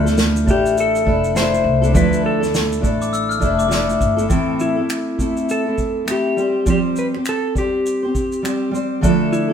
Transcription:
Already playing: upright bass D2
0.06 steel-string acoustic guitar A3 D4 E4 A4, snare, shaker
0.18 snare, shaker
0.36 shaker
0.46 upright bass A1, steel-string acoustic guitar A3 D4 E4 A4, kick, shaker
0.51 electric slide guitar G4
0.66 shaker
0.78 electric slide guitar A4, shaker
0.95 shaker
1.05 upright bass F1, steel-string acoustic guitar A3 D4 E4 A4, kick
1.24 shaker
1.35 steel-string acoustic guitar A3 D4 E4 A4, electric slide guitar C5, snare, shaker
1.54 shaker
1.64 upright bass C2
1.82 steel-string acoustic guitar A3 D4 E4 A4, shaker
1.93 upright bass D2, steel-string acoustic guitar D3 F3 A3 D4 E4 A4, electric slide guitar B4, kick, shaker
2.13 shaker
2.26 electric slide guitar A4
2.40 steel-string acoustic guitar A3 D4 E4 A4, snare, shaker
2.54 snare, shaker
2.72 shaker
2.81 upright bass A1, steel-string acoustic guitar A3 D4 E4 A4, kick, shaker
3.02 glockenspiel D6, shaker
3.13 glockenspiel E6, shaker
3.29 glockenspiel F6, shaker
3.39 upright bass F1, steel-string acoustic guitar A3 D4 E4 A4, kick, shaker
3.59 glockenspiel D6, shaker
3.68 steel-string acoustic guitar A3 D4 E4 A4, snare, shaker
3.89 shaker
4.01 upright bass G1, kick, shaker
4.17 steel-string acoustic guitar A3 D4 E4 A4, shaker
4.29 steel-string acoustic guitar A2 E3 A3 C4 E4 A4, kick, shaker
4.60 electric slide guitar E4, shaker
4.76 steel-string acoustic guitar A3 C4 E4 A4
4.89 finger snap, shaker
5.18 steel-string acoustic guitar A3 C4 E4 A4, kick, shaker
5.37 shaker
5.49 electric slide guitar A4, shaker
5.65 steel-string acoustic guitar A3 C4 E4 A4
5.78 kick, shaker
6.05 steel-string acoustic guitar A3 C4 E4, finger snap, shaker
6.09 electric slide guitar G4, steel-string acoustic guitar A4
6.37 steel-string acoustic guitar G3 C4 G4 C5, shaker
6.66 steel-string acoustic guitar F3 G3 C4 G4 C5, kick, shaker
6.70 electric slide guitar G4
6.96 electric slide guitar B4, shaker
7.14 steel-string acoustic guitar C4 G4 C5, finger snap
7.25 electric slide guitar A4, finger snap, shaker
7.55 steel-string acoustic guitar G3 C4 G4 C5, electric slide guitar G4, kick, shaker
7.86 shaker
8.03 steel-string acoustic guitar C4 G4 C5
8.15 kick, shaker
8.32 shaker
8.43 steel-string acoustic guitar G3 C4 G4 C5, finger snap, shaker
8.71 steel-string acoustic guitar G3 C4 G4 C5, shaker
9.01 steel-string acoustic guitar D3 F3 A3 D4 E4 A4, kick, shaker
9.33 electric slide guitar E4, shaker
9.49 steel-string acoustic guitar A4

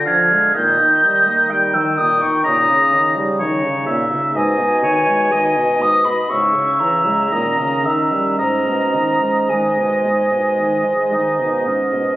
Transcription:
Already playing: bassoon D3, clarinet F4
0.06 french horn F3, oboe F5, flute G#6
0.32 french horn G#3
0.54 french horn A#2, bassoon D#3, clarinet D#4, oboe D#5, flute G6
0.80 french horn D#3
1.04 french horn G3
1.28 french horn A#3
1.50 french horn G3, oboe G5
1.74 french horn D#3, flute E6
1.97 french horn A#2, flute D#6
2.21 french horn D#3, flute C#6
2.44 french horn A#2, bassoon C#3, oboe A#5, flute D#6
2.69 french horn C#3
2.93 french horn D#3
3.16 french horn G3
3.39 french horn D#3, oboe C#5
3.64 french horn C#3
3.86 french horn A#2, oboe E5
4.12 french horn C#3
4.34 french horn G#2, bassoon B2, oboe D#5, flute G#5
4.59 french horn B2
4.84 french horn D#3, oboe C#5
5.08 french horn G#3
5.31 french horn D#3, oboe D#5
5.57 french horn B2
5.81 french horn G#2, flute D#6
6.05 french horn B2, flute B5
6.29 french horn G#2, bassoon C#3, clarinet E4, oboe E5, flute C#6
6.55 french horn C#3
6.80 french horn E3, flute A#5
7.06 french horn G#3
7.31 french horn A#2, bassoon D#3, clarinet C#4, oboe D#5
7.58 french horn C#3
7.85 french horn D#3, oboe E5
8.12 french horn G3
8.39 french horn G#2, bassoon G#2, oboe D#5, flute A#5
8.67 french horn B2
8.94 french horn D#3
9.22 french horn G#3
9.49 french horn D#3, clarinet G#3, flute G#5
9.78 french horn B2
10.05 french horn G#2
10.32 french horn B2
10.59 french horn D#3
10.86 french horn G#3
11.12 french horn D#3, clarinet D#4
11.40 french horn B2
11.66 french horn G#2, clarinet C#4
11.93 french horn B2

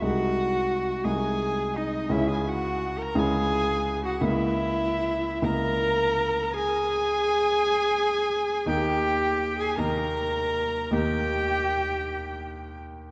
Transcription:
0.02 grand piano C2 G#3 D#4 G#4, cello F#4, violin F#5
1.04 grand piano C2 G#3 D#4 G#4, cello G#4, violin G#5
1.76 cello D#4, violin D#5
2.09 grand piano C#2 C#4 E4 G#4, cello E4, violin E5
2.27 cello G#4, violin G#5
2.47 cello F#4, violin F#5
2.98 cello A#4
3.02 violin A#5
3.15 grand piano C#2 C#4 E4 G#4, cello G#4, violin G#5
4.05 cello F#4, violin F#5
4.21 grand piano C#2 A#3 E4 A#4, cello E4, violin E5
5.42 grand piano C#2 A#3 E4 A#4, cello A#4, violin A#5
6.53 cello G#4, violin G#5
8.66 grand piano D#2 A#3 D#4 A#4, cello G4, violin G5
9.59 cello G#4, violin G#5
9.77 grand piano D#2 A#3 D#4 A#4, cello A#4, violin A#5
10.91 grand piano D#2 A#3 D#4 A#4, cello G4, violin G5

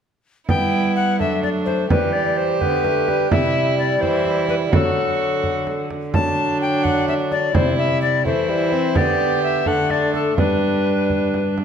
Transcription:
0.49 cello G3, bassoon B3, violin E4, recorder G5, frame drum
0.96 recorder F#5
1.19 cello F#3, bassoon A3, violin D4, recorder E5, frame drum
1.43 recorder D5, frame drum
1.65 recorder C5, frame drum
1.89 cello E3, bassoon G3, violin G4, recorder B4, frame drum
2.13 recorder D5
2.37 recorder C5
2.61 cello D3, bassoon B3, recorder B4, frame drum
2.85 bassoon A3, frame drum
3.08 bassoon G3, frame drum
3.31 cello C3, bassoon G3, violin E4, recorder E5, frame drum
3.79 recorder D5
4.01 cello E3, violin E4, recorder C5, frame drum
4.26 frame drum
4.49 recorder B4, frame drum
4.72 cello D3, bassoon F#3, violin F#4, recorder A4, frame drum
5.43 frame drum
5.67 frame drum
5.91 frame drum
6.14 bassoon F#3, violin D4, recorder A5, frame drum
6.61 recorder G5
6.84 recorder F#5, frame drum
7.08 recorder E5, frame drum
7.31 recorder D5, frame drum
7.55 cello C3, bassoon G3, violin E4, recorder C5, frame drum
7.78 recorder E5
8.02 recorder D5
8.26 cello E3, bassoon A3, violin E4, recorder C5, frame drum
8.49 bassoon G3, frame drum
8.72 bassoon C4, frame drum
8.95 cello D3, bassoon B3, violin G4, recorder D5, frame drum
9.43 recorder E5
9.66 cello D3, bassoon A3, violin D4, recorder F#5, frame drum
9.90 recorder D5, frame drum
10.14 recorder A4, frame drum
10.37 cello G2, bassoon G3, violin D4, recorder B4, frame drum
11.10 frame drum
11.34 frame drum
11.58 frame drum

